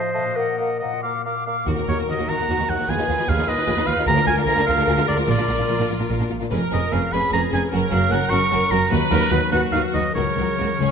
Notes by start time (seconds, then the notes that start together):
Already playing: A2 F3 F4 C5 D#5 F5
0.13 A#2 A3 D#5 F5
0.22 A#3
0.26 F#4
0.31 D#5
0.36 A#3 A#4 F#5
0.57 A#3 D#5 F#5
0.79 A#3 D#5 F#5
0.84 A#2
0.89 A#3
0.93 F4
0.98 D5 D6
1.03 A#3 F5
1.24 A#3 F5 D6
1.45 A#3 F5 D6
1.66 D#2 D#3 F#4 A#4
1.77 D#2 A#3 F#4
1.88 D#2 A#3 D#4 F#4 C#5
1.99 D#2 A#3 F#4
2.08 D#2 F#4 D#5
2.20 D#2 A#3 F#4
2.28 D#2 D#4 F#4 D#5 A#5
2.39 D#2 A#3 F#4
2.49 D#2 F#4 A#4
2.59 D#2 A#3 F#4
2.69 D#2 D#4 F#4 F#5
2.79 D#2 A#3 F#4
2.88 D#2 D#3 F4 G#4 B4 G#5
2.99 D#2 D#4 F4
3.08 D#2 B3 F4
3.19 D#2 D#4 F4
3.28 D#2 F4 G#4 F5
3.37 D#2 D#4 F4
3.47 D#2 F4 B4 D#5
3.57 D#2 D#4 F4
3.67 D#2 F4 G#4
3.78 D#2 D#4 F4
3.87 D#2 B3 F4 F5
3.97 D#2 D#4 F4
4.06 D2 D3 F4 G#4 A#4 A#5
4.16 D2 D4 F4
4.26 D2 A#3 F4 G#5
4.37 D2 D4 F4
4.46 D2 F4 G#4 A#5
4.57 D2 D4 F4
4.66 D2 F4 G#4 F5
4.78 D2 D4 F4
4.87 D2 F4 G#4 A#4
4.98 D2 D4 F4
5.07 D2 F4 D5
5.18 D2 D4 F4
5.27 A#1 A#2 F4 A#4 D5
5.37 A#2 D4 F4
5.48 A#1 A#2 A#3 F4
5.58 A#2 D4 F4
5.68 A#1 A#2 F4 A#4
5.79 A#2 D4 F4
5.89 A#1 A#2 F4 A#4
5.99 A#2 D4 F4
6.09 A#1 A#2 F4 A#4
6.19 A#2 D4 F4
6.30 A#1 A#2 A#3 F4
6.41 A#2 D4 F4
6.50 F1 F2 C#4 G#4 A#4 B4
6.72 F1 F2 G#3 C#4 G#4 B4 D#5
6.92 F1 F2 C#4 G#4 B4 F5
7.12 F1 F2 C#4 G#4 B4 B5
7.32 F1 F2 C#4 G#4 B4 A#5
7.52 F1 F2 C#4 G#4 B4 G#5
7.71 F#1 F#2 C#4 F#4 A#4
7.91 F#1 F#2 F#3 C#4 F#4 A#4 F5
8.10 F#1 F#2 C#4 F#4 A#4 F#5
8.30 F#1 F#2 C#4 F#4 A#4 C#6
8.51 F#1 F#2 C#4 F#4 A#4
8.71 F#1 F#2 F#3 C#4 F#4 A#4 A#5
8.90 D#2 D#3 D#4 F#4 B4
9.11 D#2 F#3 D#4 F#4 A#4 B4
9.31 D#2 D#4 F#4 B4
9.51 D#2 D#4 F#4 B4 F#5
9.72 D#2 D#4 F#4 B4 F5
9.94 D#2 F#3 D#4 F#4 B4 D#5
10.14 C#2 C#3 A#3 F#4 A#4 C#5
10.37 C#2 F#3 A#3 F#4 A#4
10.59 C#2 A#3 F#4 A#4
10.79 C#2 C#3 C#4 F4 G#4 C#5